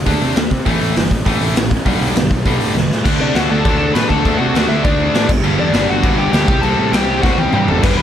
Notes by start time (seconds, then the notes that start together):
0.06 D2 D3 A3 D4, kick, open hi-hat
0.21 C3, open hi-hat
0.36 D2 D3 A3, snare, open hi-hat
0.51 C3, kick, open hi-hat
0.66 A1 A2 E3 A3, kick, open hi-hat
0.81 A1, open hi-hat
0.96 G1 A2 E3, snare, open hi-hat
1.11 A1, kick, open hi-hat
1.26 A1 A2 E3 A3, kick, open hi-hat
1.41 A1, open hi-hat
1.56 A1 A2 E3, snare, open hi-hat
1.71 kick, open hi-hat
1.86 B1 G2 D3 G3, kick, open hi-hat
2.01 B1, open hi-hat
2.16 B1 G2 D3, snare, open hi-hat
2.31 B1, kick, open hi-hat
2.46 B1 G2 D3 G3, kick, open hi-hat
2.60 A2, open hi-hat
2.75 B1 G2 D3, snare
2.90 A2, snare
3.05 D2 D3 A3 D4, kick, crash
3.20 C3 D4 D5
3.35 D2 D3 A3 D4 F#4 F#5, snare, crash
3.50 D2 A4 A5
3.65 D2 D3 A3 D4, kick, crash
3.78 A4 A5
3.94 A2 D3 A3 D4 B4 B5, snare, crash
4.08 D2 A4 A5, kick
4.25 D2 D3 A3 D4, kick, crash
4.38 C3 F#4 F#5
4.55 D2 D3 A3 D4, snare, crash
4.69 D2 E4 E5
4.84 D2 D3 A3 D4 D5, kick, crash
5.14 A2 D3 A3 D4, snare, crash
5.28 G1 G2 D3 G3, kick, crash
5.44 G1 G2 D3 G3, crash
5.58 E2 D4 D5
5.73 G1 G2 D3 G3, snare, crash
5.89 G1 F#4 F#5
6.03 G1 G2 D3 G3, kick, crash
6.18 G4 G5
6.32 D2 G2 D3 G3 G4 G5, snare, crash
6.47 C2 C3 G3, kick
6.51 C4
6.61 C2 C3 G3 C4 A4 A5, crash
6.78 A2
6.92 C2 C3 G3 C4 G4 G5, snare, crash
7.07 C2
7.22 C2 C3 G3 C4 F#4 F#5, kick, snare
7.38 G4 G5, high tom
7.53 G2 C3 G3 C4 G4 G5, mid tom
7.68 F#1 A4 A5, floor tom
7.82 G1 G2 D3 G3 B4 B5, kick, crash
7.97 G1 B4 B5